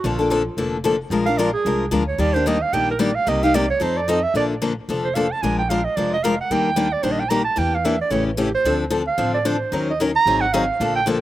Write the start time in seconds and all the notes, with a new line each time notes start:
0.04 A#1 D3 F3 A#3 D4 F4 A4
0.19 A#3 D4 A4
0.30 D3 F3 A#3 D4 A4
0.57 F1 D3 F3 A#3 D4 A4
0.84 D3 F3 A#3 D4 A4
1.10 A#1 F3 G#3 D4 F4 A#4
1.26 D4 F4 A#4 F5
1.38 F3 G#3 D4 F4 A#4 D5
1.53 G#4
1.65 C2 F3 G#3 D4 F4 A#4
1.91 D2 F3 G#3 D4 F4 A#4
2.08 C#5
2.18 D#2 D#3 G3 A#3 D4 G4 D5
2.33 A#3 D4 G4 C5
2.46 D#3 G3 A#3 D4 G4 D#5
2.62 F5
2.73 A#1 D#3 G3 A#3 D4 G4 G5
2.91 A#4
2.99 D#3 G3 A#3 D4 G4 D5
3.15 F5
3.27 C2 C3 G3 A#3 D#4 G4 D#5
3.43 A#3 D#4 G4 F5
3.54 C3 G3 A#3 D#4 G4 D5
3.70 C#5
3.80 F2 F3 C4 D#4 A4 C5
3.97 D5
4.08 F3 C4 D#4 A4 D#5
4.23 E5
4.34 A#1 D3 F3 A#3 D4 A4 D5
4.62 D3 F3 A#3 D4 A4
4.89 F1 D3 F3 A#3 D4 A4
5.04 C5
5.14 D3 F3 A#3 D4 A4 F5
5.31 A5
5.42 A#1 F3 G#3 D4 F4 A#4 G#5
5.58 G5
5.69 F3 G#3 D4 F4 A#4 F5
5.84 D#5
5.96 F1 F3 G#3 D4 F4 A#4 D5
6.13 D#5
6.23 F3 G#3 D4 F4 A#4 F5
6.41 F#5
6.50 D#2 D#3 G3 A#3 D4 G4 G5
6.76 D#3 G3 A#3 D4 G4
6.93 D5
7.03 A#1 D#3 G3 A#3 D4 G4 C5
7.11 D#5
7.19 G5
7.29 D#3 G3 A#3 D4 G4 A#5
7.44 A5
7.56 E2 E3 A#3 D4 G4 G5
7.74 F5
7.85 E3 A#3 D4 G4 E5
8.01 D5
8.10 A1 C#3 E3 A3 C#4 G4 C#5
8.26 E4
8.37 C#3 E3 A3 C#4 G4
8.54 C5
8.65 D2 D3 F3 C4 D4 A4
8.90 D3 F3 C4 D4 A4
9.07 F5
9.18 A1 D3 F3 C4 D4 A4
9.34 D5
9.45 D3 F3 C4 D4 A4 C5
9.72 D#2 D#3 F#3 C#4 D#4 A#4
9.90 D#5
10.00 D#3 F#3 C#4 D#4 A#4
10.16 A#5
10.26 G#1 D#3 F#3 C4 D#4 G#4
10.41 F#5
10.53 D#3 F#3 C4 D#4 G#4 F5
10.80 A#1 D3 F3 A#3 D4 A4
10.96 G5
11.06 D3 F3 A#3 D4 A4